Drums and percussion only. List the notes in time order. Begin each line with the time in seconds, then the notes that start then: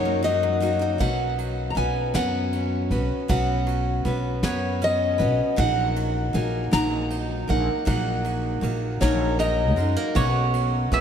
0.25 ride
0.63 ride
1.00 kick, ride
1.39 ride
1.77 ride
2.15 snare, ride
2.53 ride
2.92 ride
3.29 kick, ride
3.68 ride
4.06 ride
4.43 snare, ride
4.82 ride
5.20 ride
5.58 kick, ride
5.96 ride
6.34 ride
6.73 snare, ride
7.11 ride
7.49 ride
7.87 kick, ride
8.25 ride
8.64 ride
9.02 kick, snare, ride
9.40 ride
9.78 ride
10.16 kick, ride
10.54 ride
10.93 ride